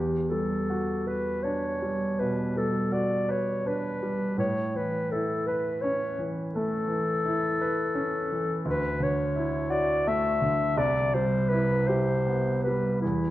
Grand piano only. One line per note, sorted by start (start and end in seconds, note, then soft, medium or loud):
0.00 2.15 E2 soft
0.31 0.91 G3 soft
0.70 1.29 F#4 soft
1.07 1.66 B4 soft
1.45 2.04 D4 soft
1.82 2.41 G3 soft
2.20 2.79 B2 soft
2.56 3.15 G3 soft
2.92 3.51 F#4 soft
3.29 3.87 B4 soft
3.66 4.24 D4 soft
4.02 4.38 G3 soft
4.38 6.48 A2 soft
4.75 5.32 E3 soft
5.12 5.69 E4 soft
5.48 6.04 B4 soft
5.84 6.39 C#4 soft
6.19 6.74 E3 soft
6.56 7.11 A3 soft
6.88 7.45 E3 soft
7.25 7.81 E4 soft
7.61 8.17 B4 soft
7.95 8.52 C#4 soft
8.32 8.66 E3 soft
8.66 10.74 D2 soft
9.00 9.56 D3 soft
9.36 9.92 E4 soft
9.70 10.27 F#4 soft
10.07 10.64 A3 soft
10.42 10.78 D3 soft
10.77 12.99 C2 soft
11.14 11.73 G3 soft
11.51 12.10 E4 soft
11.89 12.49 G4 soft
12.27 12.88 B3 soft
12.67 13.05 G3 soft
13.04 13.30 E2 soft